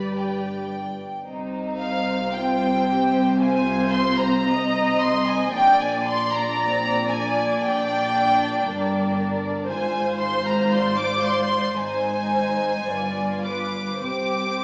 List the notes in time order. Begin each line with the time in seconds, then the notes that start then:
Already playing: G1 G2 G4 B4 D5 B5
0.19 G5
1.25 C2 C3 D#4 C5
1.79 F5
2.33 F4 G5
2.89 G4
3.40 F4 C5 G#5
3.92 C6
4.19 A#5
4.45 D#4 D#5
5.00 C6
5.26 G#5
5.53 A#1 A#2 D4 D5 G5
5.80 G#5
6.07 C6
6.34 A#5
6.59 C4 D5
7.10 D4 G#5
7.62 G5
8.65 G1 G2 A#4
9.69 G#1 G#2 F4 C5 G#5
10.21 C6
10.45 A#5
10.71 D5 C6
10.98 D6
11.24 C6
11.77 G#1 G#2 D#4 C5 G#5
12.88 G1 G2 F4 B4 D5
13.45 B4 D6
14.02 C2 C3 G4 C5 D6